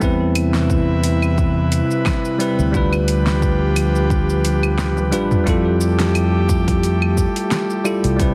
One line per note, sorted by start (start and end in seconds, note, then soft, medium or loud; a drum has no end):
0.00 1.80 E2 medium
0.00 2.72 C3 medium
0.00 2.35 G3 medium
0.00 2.36 C4 medium
0.00 2.71 E4 medium
0.00 2.37 E4 medium
0.00 5.43 B4 medium
0.00 kick loud
0.00 shaker soft
0.04 2.38 B4 medium
0.35 open hi-hat medium
0.35 claves medium
0.35 shaker medium
0.54 snare medium
0.54 shaker soft
0.70 kick loud
0.70 shaker soft
1.04 open hi-hat medium
1.04 shaker medium
1.22 claves medium
1.22 shaker soft
1.38 kick medium
1.38 shaker soft
1.72 open hi-hat medium
1.72 shaker medium
1.91 shaker soft
2.06 kick medium
2.06 snare medium
2.06 claves medium
2.06 shaker soft
2.25 shaker soft
2.39 2.70 G3 medium
2.39 2.70 C4 medium
2.39 2.71 E4 medium
2.39 2.71 B4 medium
2.39 open hi-hat medium
2.39 shaker medium
2.59 5.13 D2 medium
2.59 shaker soft
2.72 5.44 F3 medium
2.72 5.08 G3 medium
2.72 5.09 D4 medium
2.72 5.09 F4 medium
2.72 5.44 G4 medium
2.72 kick loud
2.72 shaker soft
2.77 5.10 B4 medium
2.93 claves medium
2.93 shaker soft
3.08 open hi-hat medium
3.08 shaker medium
3.27 snare medium
3.27 shaker soft
3.42 kick loud
3.42 shaker soft
3.76 open hi-hat medium
3.76 claves medium
3.76 shaker medium
3.95 shaker soft
4.10 kick loud
4.10 shaker soft
4.29 shaker soft
4.45 open hi-hat medium
4.45 shaker medium
4.63 claves medium
4.63 shaker soft
4.79 snare medium
4.79 high tom medium
4.79 shaker soft
4.97 high tom medium
4.97 shaker soft
5.11 5.36 A1 medium
5.11 5.42 G3 medium
5.11 5.43 D4 medium
5.11 5.43 F4 medium
5.11 5.44 B4 medium
5.11 open hi-hat medium
5.11 shaker medium
5.31 mid tom medium
5.31 shaker soft
5.44 7.25 F2 medium
5.44 7.80 G3 medium
5.44 8.17 A3 medium
5.44 7.81 E4 medium
5.44 7.82 F4 medium
5.44 8.17 G4 medium
5.44 kick loud
5.44 open hi-hat soft
5.44 shaker soft
5.49 7.83 A4 medium
5.81 shaker medium
6.00 snare medium
6.00 open hi-hat medium
6.00 shaker soft
6.15 open hi-hat soft
6.15 claves medium
6.15 shaker soft
6.49 kick loud
6.49 shaker medium
6.68 kick loud
6.68 open hi-hat medium
6.68 shaker soft
6.83 open hi-hat soft
6.83 shaker soft
7.02 claves medium
7.17 kick medium
7.17 shaker medium
7.36 open hi-hat medium
7.36 shaker soft
7.51 snare medium
7.51 open hi-hat soft
7.51 shaker soft
7.70 shaker soft
7.84 8.15 G3 medium
7.84 8.16 E4 medium
7.84 8.16 F4 medium
7.84 8.16 A4 medium
7.84 claves medium
7.84 shaker medium
8.04 8.34 C2 medium
8.04 open hi-hat medium
8.04 shaker soft
8.17 8.34 C3 medium
8.17 8.34 G3 medium
8.17 8.34 C4 medium
8.17 8.34 E4 medium
8.17 8.34 B4 medium
8.17 kick loud
8.17 open hi-hat soft
8.17 shaker soft
8.22 8.34 B4 medium